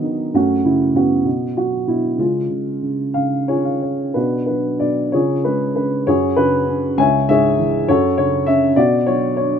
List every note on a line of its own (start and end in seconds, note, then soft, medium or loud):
0.00 0.04 D#3 medium
0.00 0.34 D#3 soft
0.00 0.31 F#3 soft
0.00 0.37 B3 medium
0.00 0.37 D#4 medium
0.34 0.93 F#2 medium
0.34 1.22 A3 medium
0.34 1.22 C#4 medium
0.34 0.66 F#4 medium
0.65 1.24 C#3 soft
0.65 0.93 E4 medium
0.94 1.24 F#2 soft
0.94 1.84 B3 soft
0.94 1.53 F#4 medium
1.25 1.86 B2 soft
1.57 2.17 F#3 soft
1.57 1.85 F#4 medium
1.87 2.17 B2 soft
1.87 2.19 E4 medium
2.18 2.48 C#3 soft
2.18 3.45 G#3 soft
2.18 3.45 C#4 soft
2.18 3.45 F4 medium
2.50 2.80 C#3 soft
2.82 3.14 C#3 soft
3.14 4.13 C#3 soft
3.14 3.49 F5 medium
3.48 4.12 F4 soft
3.48 4.12 G#4 soft
3.48 3.81 C#5 medium
3.48 3.64 G#5 soft
3.65 3.81 F5 soft
3.82 4.13 C#5 soft
4.14 4.79 B2 soft
4.14 5.09 D4 soft
4.14 5.10 F#4 soft
4.14 4.45 B4 medium
4.46 5.12 F#3 soft
4.46 4.81 B4 medium
4.80 5.12 B2 soft
4.80 5.14 D5 medium
5.12 5.75 C#3 medium
5.12 6.03 F4 medium
5.12 6.03 G#4 medium
5.12 5.42 C#5 medium
5.44 6.05 G#3 soft
5.44 5.74 B4 medium
5.76 6.06 C#3 soft
5.76 6.07 B4 medium
6.07 6.96 F#2 medium
6.07 6.37 F#4 medium
6.07 6.37 G#4 medium
6.07 6.35 C#5 medium
6.36 6.97 C#3 soft
6.36 6.95 F#4 soft
6.36 6.95 G#4 soft
6.36 7.00 B4 medium
6.68 6.98 C#4 soft
6.98 7.86 C#2 medium
6.98 7.29 C#5 medium
6.98 7.27 E5 medium
6.98 7.30 G#5 medium
7.29 7.87 G#2 soft
7.29 7.86 G#4 medium
7.29 7.85 C#5 medium
7.29 7.90 E5 medium
7.58 7.87 E3 soft
7.88 8.75 F#2 medium
7.88 8.74 F#4 medium
7.88 8.74 A4 medium
7.88 8.16 C#5 medium
8.18 8.76 C#3 medium
8.18 8.45 C#5 medium
8.46 8.77 C#4 medium
8.46 8.78 E5 medium
8.76 9.59 B2 medium
8.76 9.59 F#4 medium
8.76 9.05 D5 medium
9.07 9.59 F#3 medium
9.07 9.35 C#5 medium
9.37 9.59 D4 soft
9.37 9.59 C#5 medium